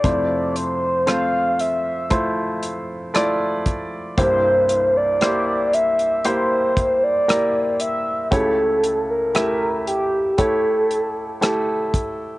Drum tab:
HH |x-x-x-x-x-x-x-x-|x-x-x-xxx-x-x-x-|x-x-x-x-x-x-x-x-|
SD |----r-------r---|----r-------r---|----r-------r---|
BD |o-------o-----o-|o---------o-----|o-------o-----o-|